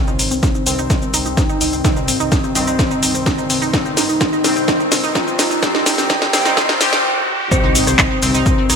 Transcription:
Already playing: C2 G2 D#3 C4, riser
0.08 D#4, shaker
0.19 G1 D#4, open hi-hat, shaker
0.31 C2 C4, shaker
0.43 C2 D#4, kick, snare, shaker
0.55 D#4, shaker
0.66 C2 G2 D#3 C4, open hi-hat, shaker
0.78 C2 D#4, shaker
0.90 C2 D#4, kick, snare, shaker
1.02 C4, shaker
1.14 C2 D#4, open hi-hat, shaker
1.26 C2 D#4, shaker
1.37 C2 C4 D#4, kick, snare, shaker
1.49 D#4, shaker
1.61 C2 D#4, open hi-hat, shaker
1.73 C2 C4, shaker
1.84 C2 G2 D#3 C4 D#4, kick, snare, shaker
1.97 D#4, shaker
2.08 G1 C4, open hi-hat, shaker
2.20 C2 D#4, shaker
2.32 C2 D#4, kick, snare, shaker
2.44 C4, shaker
2.55 C2 G2 D#3 C4 D#4, open hi-hat, shaker
2.67 C2 D#4, shaker
2.79 C2 C4, kick, snare, shaker
2.91 D#4, shaker
3.03 C2 D#4, open hi-hat, shaker
3.15 C2 C4, shaker
3.26 C2 D#4, kick, snare, shaker
3.38 D#4, shaker
3.50 C2 C4, open hi-hat, shaker
3.62 C2 D#4, shaker
3.73 C2 G2 D#3 C4 D#4, kick, snare, shaker
3.85 C4, shaker
3.97 G1 D#4, snare, open hi-hat, shaker
4.09 C2 D#4, shaker
4.21 C2 C4, kick, snare, shaker
4.33 D#4, shaker
4.44 C2 G2 D#3 C4 D#4, snare, open hi-hat, shaker
4.56 C2 C4, shaker
4.68 C2 D#4, kick, snare, shaker
4.80 D#4, shaker
4.92 C2 C4, snare, open hi-hat, shaker
5.04 C2 D#4, shaker
5.15 C2 D#4 F4, kick, snare, shaker
5.27 C4, shaker
5.39 C2 D#4, snare, open hi-hat, shaker
5.51 C2 D#4, shaker
5.62 C2 G2 D#3 C4 G4, kick, snare, shaker
5.75 D#4, snare, shaker
5.86 G1 D#4, snare, open hi-hat, shaker
5.98 C2 C4, snare, shaker
6.10 C2 D#4, kick, snare, shaker
6.22 D#4, snare, shaker
6.33 C2 G2 D#3 C4, snare, open hi-hat, shaker
6.45 C2 D#4, snare, shaker
6.57 C2 D#4, kick, snare, shaker
6.69 C4, snare, shaker
6.81 C2 G4, snare, open hi-hat, shaker
6.93 C2 G3, snare, shaker
7.51 C2 G2 D#3 C4 C5, kick, impact, shaker
7.64 D#4
7.75 G1 D#4, open hi-hat, shaker
7.87 C2 C4, cross-stick, shaker
7.99 C2 D#4, kick, clap, shaker
8.11 D#4
8.22 C2 G2 D#3 C4, open hi-hat, shaker
8.34 C2 D#4, shaker
8.46 C2 D#4, kick, shaker
8.58 C4
8.70 C2 D#4, cross-stick, open hi-hat, shaker

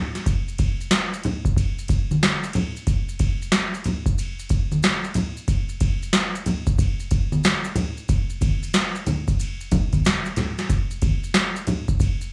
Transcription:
0.15 snare, ride, maracas
0.26 kick, ride, maracas
0.48 maracas
0.58 kick, ride, maracas
0.81 maracas
0.91 snare, hi-hat pedal, ride, maracas
1.13 maracas
1.23 ride, low conga, maracas
1.45 kick, maracas
1.57 kick, ride, maracas
1.79 maracas
1.88 kick, ride, maracas
2.11 high conga, maracas
2.23 snare, hi-hat pedal, ride, maracas
2.43 maracas
2.53 ride, low conga, maracas
2.76 maracas
2.87 kick, ride, maracas
3.09 maracas
3.19 kick, ride, maracas
3.42 maracas
3.52 snare, hi-hat pedal, ride, maracas
3.74 maracas
3.84 ride, low conga, maracas
4.06 kick, maracas
4.18 ride, maracas
4.39 maracas
4.49 kick, ride, maracas
4.72 high conga, maracas
4.83 snare, hi-hat pedal, ride, maracas
5.04 maracas
5.14 ride, low conga, maracas
5.37 maracas
5.48 kick, ride, maracas
5.69 maracas
5.80 kick, ride, maracas
6.03 maracas
6.13 snare, hi-hat pedal, ride, maracas
6.35 maracas
6.46 ride, low conga, maracas
6.67 kick, maracas
6.78 kick, ride, maracas
7.00 maracas
7.11 kick, ride, maracas
7.32 high conga, maracas
7.44 snare, hi-hat pedal, ride, maracas
7.64 maracas
7.76 ride, low conga, maracas
7.97 maracas
8.08 kick, ride, maracas
8.30 maracas
8.41 kick, ride, high conga, maracas
8.63 ride, maracas
8.73 snare, hi-hat pedal, ride, maracas
8.95 maracas
9.06 ride, high conga, low conga, maracas
9.27 kick, ride, maracas
9.40 ride, maracas
9.61 maracas
9.71 kick, ride, low conga, maracas
9.93 kick, ride, high conga, maracas
10.05 snare, hi-hat pedal, ride, maracas
10.25 maracas
10.36 snare, ride, low conga, maracas
10.58 snare, ride, maracas
10.70 kick, ride, maracas
10.91 maracas
11.02 kick, ride, high conga, maracas
11.24 maracas
11.34 snare, hi-hat pedal, ride, maracas
11.56 maracas
11.67 ride, low conga, maracas
11.88 kick, maracas
12.00 kick, ride, maracas
12.21 maracas

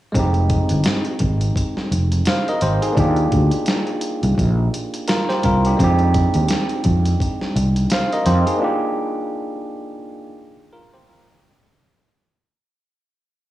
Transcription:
0.12 F1 G#3 C4, kick, closed hi-hat
0.17 D#4 G4
0.34 closed hi-hat
0.50 kick, closed hi-hat
0.69 G1, closed hi-hat
0.84 snare, closed hi-hat
1.05 closed hi-hat
1.19 G#1, kick, closed hi-hat
1.41 closed hi-hat
1.56 kick, closed hi-hat
1.77 snare
1.91 F1, closed hi-hat
2.12 closed hi-hat
2.25 C5 F5, snare, closed hi-hat
2.48 A#4 D#5, closed hi-hat
2.61 G#1 G4 C5, closed hi-hat
2.82 D#4 G#4, closed hi-hat
2.93 A#3 D4
2.97 D#2 F4 G4, kick, closed hi-hat
3.16 closed hi-hat
3.32 D2, kick, closed hi-hat
3.51 closed hi-hat
3.66 snare, closed hi-hat
3.87 closed hi-hat
4.01 closed hi-hat
4.23 C2, closed hi-hat
4.38 A#1, kick, closed hi-hat
4.74 closed hi-hat
4.94 closed hi-hat
5.08 F4 A#4, snare, closed hi-hat
5.29 G4 C5, snare, closed hi-hat
5.43 C2 F4 A#4, kick, closed hi-hat
5.65 D4 G4, closed hi-hat
5.77 F2 G#3 C4, kick, closed hi-hat
5.82 D#4 G4
5.99 closed hi-hat
6.14 kick, closed hi-hat
6.34 D#2, closed hi-hat
6.48 snare, closed hi-hat
6.69 closed hi-hat
6.84 F2, kick, closed hi-hat
7.05 closed hi-hat
7.20 kick, closed hi-hat
7.41 snare
7.56 C2, closed hi-hat
7.76 closed hi-hat
7.90 C5 F5, snare, closed hi-hat
8.12 A#4 D#5, closed hi-hat
8.26 F2 G4 C5, closed hi-hat
8.47 D#4 G#4, closed hi-hat
8.57 A#3 D4
8.62 F4 G4
10.73 F4 A#4
10.94 G4 C5
11.09 F4 A#4
11.31 D4 G4

